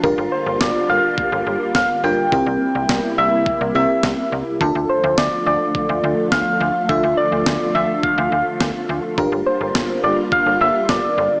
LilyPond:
<<
  \new Staff \with { instrumentName = "Soft synth lead" } { \time 4/4 \key d \minor \tempo 4 = 105 bes'8 c''8 d''8 f''4. f''8 g''8~ | g''4. e''4 e''4 r8 | a'8 c''8 d''8 d''4. f''4 | e''8 d''4 e''8 f''4. r8 |
bes'8 c''4 d''8 f''8 e''8 d''4 | }
  \new Staff \with { instrumentName = "FM electric piano" } { \time 4/4 \key d \minor <d' f' g' bes'>2.~ <d' f' g' bes'>8 <d' f' g' bes'>8 | <c' e' g' bes'>2~ <c' e' g' bes'>8 <c' e' g' bes'>4. | <d' f' a'>1 | <d' f' a'>1 |
<d' f' g' bes'>1 | }
  \new Staff \with { instrumentName = "String machine" } { \clef bass \time 4/4 \key d \minor <d g bes f'>1 | <c g bes e'>1 | <d f a f'>1~ | <d f a f'>1 |
<d g bes f'>1 | }
  \new Staff \with { instrumentName = "FM bass" } { \clef bass \time 4/4 \key d \minor g,,16 g,,16 r16 g,,16 g,,16 r16 g,,16 r8 g,,16 g,,16 r16 g,,16 r16 g,,16 r16 | c,16 c,16 r16 c,16 c,16 r16 c,16 r8 c,16 c,16 r16 c,16 r16 c,16 r16 | d,16 d,16 r16 d,16 d,16 r16 d,16 r8 d,16 d,16 r16 d,16 r16 d,16 r16 | d,16 d,16 r16 d,16 d,16 r16 d,16 r8 d,16 d,16 r16 d,16 r16 d,16 r16 |
g,,16 g,,16 r16 g,,16 g,,16 r16 g,,16 r8 g,,16 g,,16 r16 g,,16 r16 g,,16 r16 | }
  \new DrumStaff \with { instrumentName = "Drums" } \drummode { \time 4/4 bd4 <bd sn>4 bd4 <bd sn>4 | bd4 <bd sn>4 bd4 <bd sn>4 | bd4 <bd sn>4 bd4 <bd sn>4 | bd4 <bd sn>4 bd4 <bd sn>4 |
bd4 <bd sn>4 bd4 <bd sn>4 | }
>>